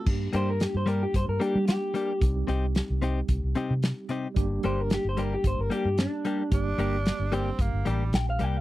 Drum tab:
CC |x-------|--------|--------|--------|
HH |-xxxxxxx|xxxxxxxx|xxxxxxxx|xxxxxxxx|
SD |--o---o-|--o---o-|--o---o-|--o---o-|
BD |o---o---|o---o---|o---o---|o---o---|